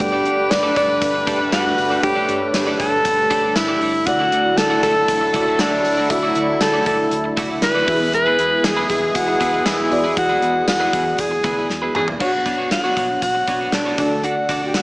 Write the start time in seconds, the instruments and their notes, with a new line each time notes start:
Already playing: analog synth pad D3
0.00 fingered electric bass G1, fm electric piano G2 G3 A3 D4 D5, analog synth pad G3 A3, horn section G3 D4 B4, alto saxophone G4, muted clean electric guitar stroke, kick, closed hi-hat
0.12 clean electric guitar D4 G4 A4 D5
0.25 fingered electric bass G1, clean electric guitar D4 G4 A4 D5, closed hi-hat
0.51 fingered electric bass G1, alto saxophone D5, muted clean electric guitar stroke, snare, closed hi-hat, tambourine
0.63 clean electric guitar D4 G4 A4 D5
0.76 fingered electric bass G1, clean electric guitar D4 G4 A4 D5, alto saxophone D5, kick, closed hi-hat
0.89 muted clean electric guitar stroke
1.01 fingered electric bass G1, muted clean electric guitar stroke, kick, closed hi-hat
1.14 muted clean electric guitar stroke
1.27 fingered electric bass F#1, clean electric guitar D4 G4 A4 D5, kick, closed hi-hat
1.40 clean electric guitar D4 G4 A4 D5
1.52 fingered electric bass G1, clean electric guitar D4 G4 A4 D5, alto saxophone F#4, snare, closed hi-hat, tambourine
1.65 muted clean electric guitar stroke
1.78 fingered electric bass G1, muted clean electric guitar stroke, open hi-hat
1.90 clean electric guitar D4 G4 A4 D5
2.02 fingered electric bass G1, fm electric piano G2 A3 D4 G4 C#5, alto saxophone G4, muted clean electric guitar stroke, kick, closed hi-hat
2.15 clean electric guitar D4 G4 A4 D5
2.28 fingered electric bass G1, clean electric guitar D4 G4 A4 D5, closed hi-hat
2.41 muted clean electric guitar stroke
2.54 fingered electric bass G1, muted clean electric guitar stroke, snare, closed hi-hat, tambourine
2.67 clean electric guitar D4 G4 A4 D5
2.79 fingered electric bass G1, clean electric guitar D4 G4 A4 D5, alto saxophone A4, kick, closed hi-hat
2.92 muted clean electric guitar stroke
3.05 fingered electric bass G1, muted clean electric guitar stroke, kick, closed hi-hat
3.17 muted clean electric guitar stroke
3.30 fingered electric bass F#1, clean electric guitar D4 G4 A4 D5, kick, closed hi-hat
3.43 clean electric guitar D4 G4 A4 D5
3.56 fingered electric bass G1, alto saxophone E4, snare, closed hi-hat, tambourine
3.68 clean electric guitar D4 G4 A4 D5
3.81 fingered electric bass G1, clean electric guitar D4 G4 A4 D5, open hi-hat
4.06 fingered electric bass D2, fm electric piano D3 A3 E4 F#4 D5, horn section F#3 E4 A4, analog synth pad F#3 E4, alto saxophone F#4, muted clean electric guitar stroke, kick, closed hi-hat
4.19 clean electric guitar A3 E4 F#4 D5
4.32 fingered electric bass D2, clean electric guitar A3 E4 F#4 D5, closed hi-hat
4.45 muted clean electric guitar stroke
4.57 fingered electric bass D2, alto saxophone A4, muted clean electric guitar stroke, snare, closed hi-hat, tambourine
4.70 clean electric guitar A3 E4 F#4 D5
4.83 fingered electric bass D2, clean electric guitar A3 E4 F#4 D5, alto saxophone A4, kick, closed hi-hat
5.08 fingered electric bass D2, muted clean electric guitar stroke, kick, closed hi-hat
5.21 muted clean electric guitar stroke
5.34 fingered electric bass C#2, clean electric guitar A3 E4 F#4 D5, kick, closed hi-hat
5.46 clean electric guitar A3 E4 F#4 D5
5.59 fingered electric bass D2, clean electric guitar A3 E4 F#4 D5, alto saxophone D4, snare, closed hi-hat, tambourine
5.72 muted clean electric guitar stroke
5.85 fingered electric bass D2, muted clean electric guitar stroke, open hi-hat
5.97 clean electric guitar A3 E4 F#4 D5
6.09 fingered electric bass D2, fm electric piano D3 A3 E4 F#4 D5, alto saxophone E4, muted clean electric guitar stroke, kick, closed hi-hat
6.23 clean electric guitar A3 E4 F#4 D5
6.35 fingered electric bass D2, clean electric guitar A3 E4 F#4 D5, closed hi-hat
6.48 muted clean electric guitar stroke
6.61 fingered electric bass D2, alto saxophone A4, muted clean electric guitar stroke, snare, closed hi-hat, tambourine
6.74 clean electric guitar A3 E4 F#4 D5
6.86 fingered electric bass D2, clean electric guitar A3 E4 F#4 D5, alto saxophone A4, kick, closed hi-hat
6.99 muted clean electric guitar stroke
7.11 fingered electric bass D2, muted clean electric guitar stroke, closed hi-hat
7.24 muted clean electric guitar stroke
7.37 fingered electric bass C#2, clean electric guitar A3 E4 F#4 D5, kick, closed hi-hat
7.50 clean electric guitar A3 E4 F#4 D5
7.62 fingered electric bass D2, alto saxophone B4, snare, closed hi-hat, tambourine
7.75 clean electric guitar A3 E4 F#4 D5
7.87 fingered electric bass E2, analog synth pad B2 G#3, fm electric piano E3 B3 E4 F#4 E5, horn section E3 B3 G#4, clean electric guitar B3 E4 G#4 B4, kick, open hi-hat
7.95 fm electric piano G#4
8.00 muted clean electric guitar stroke
8.13 alto saxophone B4, muted clean electric guitar stroke, closed hi-hat
8.26 clean electric guitar B3 E4 G#4 B4
8.38 fingered electric bass E2, clean electric guitar B3 E4 G#4 B4, closed hi-hat
8.51 muted clean electric guitar stroke
8.64 fingered electric bass E2, alto saxophone G#4, muted clean electric guitar stroke, snare, closed hi-hat, tambourine
8.77 clean electric guitar B3 E4 G#4 B4
8.89 fingered electric bass E2, clean electric guitar B3 E4 G#4 B4, alto saxophone G#4, kick, closed hi-hat
9.02 muted clean electric guitar stroke
9.15 fingered electric bass E2, alto saxophone F#4, muted clean electric guitar stroke, kick, closed hi-hat
9.28 muted clean electric guitar stroke
9.40 fingered electric bass E2, clean electric guitar B3 E4 G#4 B4, kick, closed hi-hat
9.53 clean electric guitar B3 E4 G#4 B4
9.65 fingered electric bass E2, clean electric guitar B3 E4 G#4 B4, alto saxophone E4, snare, closed hi-hat, tambourine
9.78 muted clean electric guitar stroke
9.90 fingered electric bass E2, fm electric piano E3 B3 E4 F#4 D5, muted clean electric guitar stroke, open hi-hat
9.98 fm electric piano G#4
10.04 clean electric guitar B3 E4 G#4 B4
10.17 fingered electric bass E2, alto saxophone F#4, kick, closed hi-hat
10.29 clean electric guitar B3 E4 G#4 B4
10.42 fingered electric bass E2, clean electric guitar B3 E4 G#4 B4, closed hi-hat
10.68 fingered electric bass E2, alto saxophone F#4, muted clean electric guitar stroke, snare, closed hi-hat, tambourine
10.80 clean electric guitar B3 E4 G#4 B4
10.93 fingered electric bass E2, clean electric guitar B3 E4 G#4 B4, kick, closed hi-hat
11.06 muted clean electric guitar stroke
11.18 fingered electric bass E2, alto saxophone G#4, muted clean electric guitar stroke, kick, closed hi-hat
11.31 muted clean electric guitar stroke
11.44 fingered electric bass D2, clean electric guitar B3 E4 G#4 B4, kick, closed hi-hat
11.57 clean electric guitar B3 E4 G#4 B4
11.70 fingered electric bass E2, snare
11.82 clean electric guitar B3 E4 G#4 B4
11.95 fingered electric bass E2, clean electric guitar B3 E4 G#4 B4, alto saxophone G#4, mid tom
12.08 floor tom
12.19 fingered electric bass B1, fm electric piano B2 B3 D4 F#4 C#5, clean electric guitar B3 D4 F#4 C#5, alto saxophone F#4, kick, crash
12.33 muted clean electric guitar stroke
12.46 fingered electric bass B1, clean electric guitar B3 D4 F#4 C#5, kick, closed hi-hat
12.58 clean electric guitar B3 D4 F#4 C#5
12.71 alto saxophone F#4, snare, closed hi-hat
12.84 clean electric guitar B3 D4 F#4 C#5
12.96 fingered electric bass B1, clean electric guitar B3 D4 F#4 C#5, kick, closed hi-hat
13.09 muted clean electric guitar stroke
13.22 fingered electric bass B1, alto saxophone F#4, muted clean electric guitar stroke, kick, closed hi-hat
13.35 muted clean electric guitar stroke
13.47 fingered electric bass B1, clean electric guitar B3 D4 F#4 C#5, kick, closed hi-hat
13.60 clean electric guitar B3 D4 F#4 C#5
13.72 fingered electric bass B1, alto saxophone D4, snare, closed hi-hat
13.85 clean electric guitar B3 D4 F#4 C#5
13.97 fingered electric bass D2, fm electric piano D3 A3 D4 F#4 D5, clean electric guitar D4 F#4 A4 D5, alto saxophone A4, kick, closed hi-hat
14.11 muted clean electric guitar stroke
14.23 clean electric guitar D4 F#4 A4 D5, alto saxophone F#4, closed hi-hat
14.38 muted clean electric guitar stroke
14.49 fingered electric bass D2, clean electric guitar D4 F#4 A4 D5, kick, closed hi-hat
14.62 clean electric guitar D4 F#4 A4 D5
14.68 alto saxophone G4
14.74 alto saxophone F#4, muted clean electric guitar stroke, snare, closed hi-hat